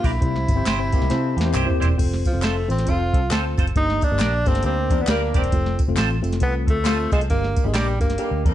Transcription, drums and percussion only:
0.04 kick, open hi-hat, tambourine
0.22 kick, closed hi-hat
0.36 snare
0.48 kick, closed hi-hat, tambourine
0.66 snare, clap, closed hi-hat, tambourine
0.92 kick, closed hi-hat, tambourine
1.02 snare
1.10 snare, closed hi-hat, tambourine
1.38 snare, closed hi-hat
1.54 clap, closed hi-hat, mid tom, tambourine
1.70 floor tom
1.82 closed hi-hat, floor tom, tambourine
1.99 kick, closed hi-hat, crash, tambourine
2.13 snare
2.25 kick, closed hi-hat, tambourine
2.42 snare, clap, closed hi-hat, tambourine
2.70 closed hi-hat, tambourine
2.78 snare, closed hi-hat
2.87 kick, closed hi-hat, tambourine
3.14 kick, closed hi-hat
3.31 snare, clap, closed hi-hat, tambourine
3.57 kick, closed hi-hat, tambourine
3.67 closed hi-hat
3.76 kick, closed hi-hat
3.90 snare
4.01 kick, closed hi-hat, tambourine
4.19 snare, clap, closed hi-hat, tambourine
4.46 kick, closed hi-hat, tambourine
4.55 snare, closed hi-hat
4.63 closed hi-hat, tambourine
4.90 kick, closed hi-hat, tambourine
5.07 snare, clap, closed hi-hat, tambourine
5.34 kick, closed hi-hat, tambourine
5.44 closed hi-hat
5.52 kick, closed hi-hat, tambourine
5.66 snare
5.79 kick, closed hi-hat, tambourine
5.96 snare, clap, closed hi-hat, tambourine
6.24 closed hi-hat, tambourine
6.32 snare, closed hi-hat
6.40 kick, closed hi-hat, tambourine
6.67 kick, closed hi-hat
6.85 snare, clap, closed hi-hat, tambourine
7.12 kick, closed hi-hat, tambourine
7.21 closed hi-hat
7.30 kick, closed hi-hat, tambourine
7.44 snare
7.56 kick, closed hi-hat, tambourine
7.74 snare, clap, closed hi-hat, tambourine
8.01 kick, closed hi-hat, tambourine
8.10 snare, closed hi-hat
8.18 closed hi-hat, tambourine
8.45 kick, closed hi-hat, tambourine

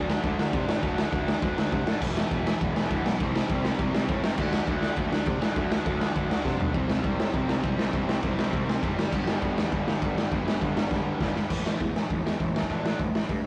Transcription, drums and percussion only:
0.10 snare
0.24 kick, ride
0.39 snare
0.53 kick, ride
0.69 snare
0.83 kick, ride
0.98 snare
1.12 kick, ride
1.28 snare
1.42 kick, ride
1.58 snare
1.72 kick, ride
1.87 snare
2.01 kick, crash
2.17 snare
2.31 kick, ride
2.47 snare
2.61 kick, ride
2.76 snare
2.90 kick, ride
3.06 snare
3.20 kick, ride
3.36 snare
3.49 kick, ride
3.65 snare
3.79 kick, ride
3.95 snare
4.08 kick, ride
4.24 snare
4.38 kick, crash
4.53 snare
4.67 kick, ride
4.83 snare
4.96 kick, ride
5.13 snare
5.26 kick, ride
5.42 snare
5.56 kick, ride
5.72 snare
5.86 kick, ride
6.02 snare
6.16 kick, ride
6.31 snare
6.45 kick, snare
6.60 floor tom
6.74 kick, ride
6.90 snare
7.04 kick, ride
7.20 snare
7.34 kick, ride
7.49 snare
7.63 kick, ride
7.79 snare
7.93 kick, ride
8.09 snare
8.23 kick, ride
8.39 snare
8.53 kick, ride
8.69 snare
8.83 kick, ride
8.99 snare
9.12 kick, crash
9.27 snare
9.42 kick, ride
9.58 snare
9.72 kick, ride
9.88 snare
10.02 kick, ride
10.18 snare
10.31 kick, ride
10.48 snare
10.61 kick, ride
10.77 snare
10.91 kick, snare
11.21 kick, snare
11.36 snare
11.50 kick, crash
11.66 snare
11.80 kick, open hi-hat
11.96 snare
12.10 kick, open hi-hat
12.26 snare
12.40 kick, open hi-hat
12.56 snare
12.62 kick
12.70 kick, open hi-hat
12.86 snare
13.00 kick, open hi-hat
13.15 snare
13.29 kick, open hi-hat

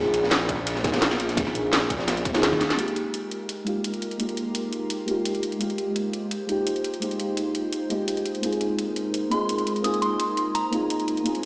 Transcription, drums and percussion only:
0.14 closed hi-hat, ride
0.23 snare
0.31 snare, closed hi-hat, ride
0.49 kick, closed hi-hat, ride
0.67 closed hi-hat, ride
0.75 snare
0.84 kick, snare, closed hi-hat, ride
0.93 snare, closed hi-hat, ride
1.02 snare, closed hi-hat, ride
1.11 snare, ride
1.20 closed hi-hat, ride
1.29 snare, closed hi-hat
1.37 kick, closed hi-hat, ride
1.47 snare
1.55 closed hi-hat
1.72 snare, closed hi-hat, ride
1.90 kick, closed hi-hat, ride
1.99 snare
2.07 snare, closed hi-hat, ride
2.17 closed hi-hat
2.25 kick, closed hi-hat, ride
2.34 snare, closed hi-hat, ride
2.43 snare, closed hi-hat
2.52 kick, ride
2.60 snare, closed hi-hat, ride
2.70 snare, closed hi-hat, ride
2.79 closed hi-hat
2.88 closed hi-hat
2.96 closed hi-hat
3.14 closed hi-hat
3.31 closed hi-hat
3.49 closed hi-hat
3.67 closed hi-hat
3.84 closed hi-hat
3.94 closed hi-hat
4.02 closed hi-hat
4.11 closed hi-hat
4.20 closed hi-hat
4.29 closed hi-hat
4.37 closed hi-hat
4.55 closed hi-hat
4.72 closed hi-hat
4.90 closed hi-hat
5.08 closed hi-hat
5.25 closed hi-hat
5.35 closed hi-hat
5.43 closed hi-hat
5.52 closed hi-hat
5.61 closed hi-hat
5.70 closed hi-hat
5.78 closed hi-hat
5.96 closed hi-hat
6.13 closed hi-hat
6.31 closed hi-hat
6.49 closed hi-hat
6.67 closed hi-hat
6.76 closed hi-hat
6.84 closed hi-hat
6.94 closed hi-hat
7.02 closed hi-hat
7.11 closed hi-hat
7.20 closed hi-hat
7.37 closed hi-hat
7.55 closed hi-hat
7.72 closed hi-hat
7.90 closed hi-hat
8.08 closed hi-hat
8.17 closed hi-hat
8.26 closed hi-hat
8.35 closed hi-hat
8.43 closed hi-hat
8.53 closed hi-hat
8.61 closed hi-hat
8.79 closed hi-hat
8.96 closed hi-hat
9.14 closed hi-hat
9.31 closed hi-hat
9.49 closed hi-hat
9.58 closed hi-hat
9.67 closed hi-hat
9.76 closed hi-hat
9.84 closed hi-hat
9.94 closed hi-hat
10.02 closed hi-hat
10.20 closed hi-hat
10.37 closed hi-hat
10.55 closed hi-hat
10.73 closed hi-hat
10.90 closed hi-hat
11.00 closed hi-hat
11.08 closed hi-hat
11.17 closed hi-hat
11.26 closed hi-hat
11.35 closed hi-hat

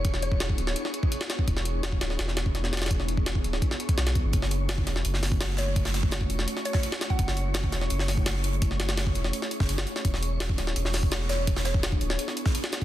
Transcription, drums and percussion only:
0.05 kick, closed hi-hat
0.14 snare
0.22 closed hi-hat
0.32 kick
0.40 snare, closed hi-hat
0.49 kick
0.58 closed hi-hat
0.67 snare
0.76 closed hi-hat
0.85 snare
0.94 closed hi-hat
1.03 kick
1.12 closed hi-hat
1.21 snare
1.30 snare, closed hi-hat
1.39 kick
1.48 kick, closed hi-hat
1.57 snare
1.65 closed hi-hat
1.83 snare, closed hi-hat
1.92 kick
2.01 snare, closed hi-hat
2.10 snare
2.19 snare, closed hi-hat
2.28 snare
2.37 snare, closed hi-hat
2.46 kick
2.55 snare, closed hi-hat
2.64 snare
2.73 snare, closed hi-hat
2.77 snare, closed hi-hat
2.82 snare, closed hi-hat
2.86 snare, closed hi-hat
2.91 kick, closed hi-hat
3.00 snare
3.08 closed hi-hat
3.17 kick
3.26 snare, closed hi-hat
3.35 kick
3.44 closed hi-hat
3.53 snare
3.62 kick, closed hi-hat
3.71 snare
3.80 closed hi-hat
3.89 kick, closed hi-hat
3.98 snare, closed hi-hat
4.07 snare, closed hi-hat
4.15 kick, closed hi-hat
4.33 kick, closed hi-hat
4.42 snare
4.51 closed hi-hat
4.69 snare, closed hi-hat
4.78 kick
4.87 snare, closed hi-hat
4.96 snare
5.05 closed hi-hat
5.14 snare
5.23 snare, closed hi-hat, open hi-hat
5.32 kick, closed hi-hat
5.40 snare, closed hi-hat
5.50 snare
5.57 snare, closed hi-hat
5.76 kick, closed hi-hat
5.85 snare, closed hi-hat
5.94 snare, closed hi-hat
6.03 kick
6.11 snare, closed hi-hat
6.21 kick
6.30 closed hi-hat
6.39 snare
6.48 closed hi-hat
6.57 snare, closed hi-hat
6.65 closed hi-hat
6.73 kick, snare
6.83 closed hi-hat
6.92 snare
7.01 snare, closed hi-hat
7.10 kick, closed hi-hat
7.19 kick, closed hi-hat
7.28 snare
7.37 closed hi-hat
7.54 snare, closed hi-hat
7.64 kick
7.72 snare, closed hi-hat
7.82 snare
7.90 closed hi-hat
7.99 snare
8.08 snare, closed hi-hat, open hi-hat
8.17 kick, closed hi-hat
8.26 snare, closed hi-hat
8.36 snare
8.44 closed hi-hat
8.53 closed hi-hat
8.62 kick, closed hi-hat
8.71 snare
8.80 snare, closed hi-hat
8.89 snare, closed hi-hat
8.97 snare, closed hi-hat
9.07 kick
9.15 closed hi-hat
9.24 snare
9.33 closed hi-hat
9.42 snare, closed hi-hat
9.51 closed hi-hat
9.60 kick, snare
9.69 closed hi-hat
9.78 snare
9.87 closed hi-hat
9.96 snare, closed hi-hat
10.05 kick, closed hi-hat
10.14 snare
10.23 closed hi-hat
10.40 snare, closed hi-hat
10.49 kick
10.58 snare, closed hi-hat
10.67 snare
10.76 closed hi-hat
10.85 snare
10.93 snare, closed hi-hat, open hi-hat
11.03 kick, closed hi-hat
11.11 snare, closed hi-hat
11.21 snare
11.29 snare, closed hi-hat
11.47 kick, closed hi-hat
11.56 snare, closed hi-hat
11.65 snare, closed hi-hat
11.74 kick
11.83 snare, closed hi-hat
11.92 kick
12.01 closed hi-hat
12.10 snare
12.19 closed hi-hat
12.28 snare, closed hi-hat
12.37 closed hi-hat
12.46 kick, snare
12.55 closed hi-hat
12.64 snare
12.72 snare, closed hi-hat
12.81 closed hi-hat

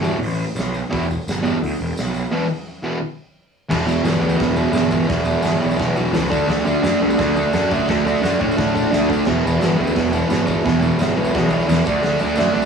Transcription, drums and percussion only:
0.04 tambourine
0.23 open hi-hat
0.32 tambourine
0.40 tambourine
0.56 snare, open hi-hat, tambourine
0.74 tambourine
0.93 kick, open hi-hat
1.02 tambourine
1.11 tambourine
1.21 tambourine
1.28 snare, open hi-hat, tambourine
1.37 tambourine
1.45 tambourine
1.64 open hi-hat
1.73 tambourine
1.97 snare, open hi-hat, tambourine
2.07 tambourine
2.14 tambourine
3.71 kick, snare, crash
3.88 tambourine
4.05 snare, open hi-hat, tambourine
4.21 tambourine
4.29 tambourine
4.40 kick, snare, open hi-hat
4.56 tambourine
4.65 tambourine
4.73 snare, open hi-hat, tambourine
4.91 kick, tambourine
5.10 kick, snare, open hi-hat
5.25 tambourine
5.43 snare, open hi-hat, tambourine
5.63 tambourine
5.71 tambourine
5.80 kick, snare, open hi-hat
5.97 tambourine
6.07 tambourine
6.14 snare, open hi-hat, tambourine
6.32 kick, tambourine
6.48 snare, open hi-hat
6.67 tambourine
6.74 tambourine
6.84 snare, open hi-hat, tambourine
7.03 tambourine
7.10 tambourine
7.18 kick, snare, open hi-hat
7.36 tambourine
7.46 tambourine
7.53 snare, open hi-hat, tambourine
7.71 kick, tambourine
7.88 kick, snare, open hi-hat
7.98 tambourine
8.07 tambourine
8.17 tambourine
8.23 snare, open hi-hat, tambourine
8.41 kick, tambourine
8.52 tambourine
8.58 kick, snare, open hi-hat
8.68 tambourine
8.76 kick, tambourine
8.86 tambourine
8.91 snare, open hi-hat, tambourine
9.05 tambourine
9.10 kick, tambourine
9.22 snare, crash, tambourine
9.27 kick
9.47 tambourine
9.61 snare, open hi-hat, tambourine
9.80 tambourine
9.87 tambourine
9.96 kick, snare, open hi-hat
10.13 tambourine
10.22 tambourine
10.30 snare, open hi-hat, tambourine
10.47 kick, tambourine
10.66 kick, snare, open hi-hat
10.82 tambourine
10.91 tambourine
10.99 snare, open hi-hat, tambourine
11.17 tambourine
11.24 tambourine
11.35 kick, snare, open hi-hat
11.50 tambourine
11.59 tambourine
11.69 snare, open hi-hat, tambourine
11.85 kick, tambourine
12.03 snare, open hi-hat
12.19 tambourine
12.29 tambourine
12.35 snare, open hi-hat, tambourine
12.55 tambourine
12.62 tambourine

